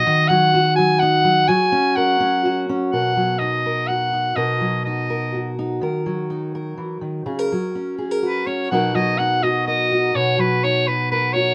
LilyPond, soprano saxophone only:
\new Staff \with { instrumentName = "Soprano saxophone" } { \time 3/4 \key b \major \tempo 4 = 125 dis''8 fis''4 gis''8 fis''4 | gis''4 fis''4. r8 | fis''4 dis''4 fis''4 | dis''4 dis''4. r8 |
r2. | r2 b'8 cis''8 | fis''8 dis''8 fis''8 dis''8 dis''4 | cis''8 b'8 cis''8 b'8 b'8 cis''8 | }